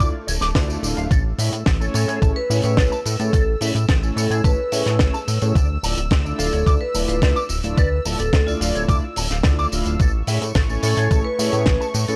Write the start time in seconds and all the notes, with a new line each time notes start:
Already playing: A3 A4
0.00 D2 A3 D4 E4 F4 D5, kick, closed hi-hat, tambourine, swell
0.27 D1 C#5, open hi-hat, tambourine
0.41 D1 D6, snare, closed hi-hat, tambourine
0.55 D2 A3 D4 E4 F4 D5, kick, snare, closed hi-hat, tambourine
0.69 D5, tambourine
0.82 D1 A3 D4 E4 F4 D5 F5, open hi-hat, tambourine
0.97 D1 F5, closed hi-hat, tambourine
1.11 A1 A4 E6, kick, closed hi-hat, tambourine
1.38 A2 A3 C#4 E4 G#4 C#5 E5, open hi-hat, tambourine
1.52 A2, closed hi-hat, tambourine
1.66 A1 A4, kick, snare, closed hi-hat, tambourine
1.80 A3 C#4 E4 A4 C#5 G#5, tambourine
1.94 A2 A4 C#5, open hi-hat, tambourine
2.08 A2 G#4 A4, closed hi-hat, tambourine
2.22 A1 A3 C#4 E4 G#4 C#5 A5, kick, closed hi-hat, tambourine
2.36 B4
2.49 A2 A3 C#4 E4 G#4 C#5 E5, open hi-hat, tambourine
2.63 A2 B4 C#5, closed hi-hat, tambourine
2.77 A1 A3 C#4 E4 G#4 A4 B4 C#5, kick, snare, closed hi-hat, tambourine
2.92 A5, tambourine
3.05 A2, open hi-hat, tambourine
3.19 A2 A3 C#4 E4 G#4 A4 C#5, closed hi-hat, tambourine
3.33 A1 A4, kick, closed hi-hat, tambourine
3.60 A2 A3 C#4 E4 G#4 C#5 E5, open hi-hat, tambourine
3.75 A2, closed hi-hat, tambourine
3.89 A1 A4, kick, snare, closed hi-hat, tambourine
4.02 A3 C#4 E4 A4 C#5 G#5, tambourine
4.16 A2 A4 C#5, open hi-hat, tambourine
4.30 A2 G#4, closed hi-hat, tambourine
4.44 A1 A3 C#4 E4 G#4 B4 C#5 A5, kick, closed hi-hat, tambourine
4.72 A2 A3 C#4 E4 G#4 C#5 E5, open hi-hat, tambourine
4.86 A2 C#5, snare, closed hi-hat, tambourine
4.99 A1 A3 C#4 E4 G#4 A4 C#5, kick, snare, closed hi-hat, tambourine
5.14 A5, tambourine
5.28 A2, open hi-hat, tambourine
5.41 A2 A3 C#4 E4 G#4 C#5, closed hi-hat, tambourine
5.55 D2 D5, kick, closed hi-hat, tambourine
5.83 D1 A3 D4 E4 F4 D5 A5, open hi-hat, tambourine
5.97 D1, closed hi-hat, tambourine
6.10 D2 D5, kick, snare, closed hi-hat, tambourine
6.25 A3 D4 E4 F4 D5, tambourine
6.39 D1 A4 F5, open hi-hat, tambourine
6.52 D1 A4 C#5, closed hi-hat, tambourine
6.66 D2 A3 D4 E4 F4 D5 D6, kick, closed hi-hat, tambourine
6.81 B4
6.94 D1 A3 D4 E4 F4 D5 A5, open hi-hat, tambourine
7.08 D1 B4 F5, closed hi-hat, tambourine
7.21 D2 A3 D4 E4 F4 B4 D5, kick, snare, closed hi-hat, tambourine
7.36 D6, tambourine
7.49 D1, open hi-hat, tambourine
7.63 D1 A3 D4 E4 F4 D5, closed hi-hat, tambourine
7.77 D2 B4 D5, kick, closed hi-hat, tambourine
8.05 D1 A3 D4 E4 F4 D5 A5, open hi-hat, tambourine
8.19 D1 A4, closed hi-hat, tambourine
8.33 D2 A4 D5, kick, snare, closed hi-hat, tambourine
8.47 A3 D4 E4 F4 D5, tambourine
8.61 D1 F4 F5, open hi-hat, tambourine
8.75 D1 C#5, closed hi-hat, tambourine
8.88 D2 A3 D4 E4 F4 D5 D6, kick, closed hi-hat, tambourine
9.16 D1 A5, open hi-hat, tambourine
9.30 D1 F5, snare, closed hi-hat, tambourine
9.43 D2 A3 D4 E4 F4 D5, kick, snare, closed hi-hat, tambourine
9.59 D6, tambourine
9.72 D1 A3 D4 E4 F4 F5, open hi-hat, tambourine
9.85 D1, closed hi-hat, tambourine
9.99 A1 A3 A4 C#6, kick, closed hi-hat, tambourine
10.27 A2 A3 C#4 E4 G#4 C#5 E5, open hi-hat, tambourine
10.41 A2, closed hi-hat, tambourine
10.55 A1 A4, kick, snare, closed hi-hat, tambourine
10.69 A3 C#4 E4 A4 C#5 G#5, tambourine
10.82 A2 A4 C#5, open hi-hat, tambourine
10.97 A2 G#4 A4, closed hi-hat, tambourine
11.10 A1 A3 C#4 E4 G#4 C#5 A5, kick, closed hi-hat, tambourine
11.24 B4
11.38 A2 A3 C#4 E4 G#4 C#5 E5, open hi-hat, tambourine
11.52 A2 B4 C#5, closed hi-hat, tambourine
11.66 A1 A3 C#4 E4 G#4 A4 B4 C#5, kick, snare, closed hi-hat, tambourine
11.81 A5, tambourine
11.94 A2, open hi-hat, tambourine
12.08 A2 A3 C#4 E4 G#4 A4 C#5, closed hi-hat, tambourine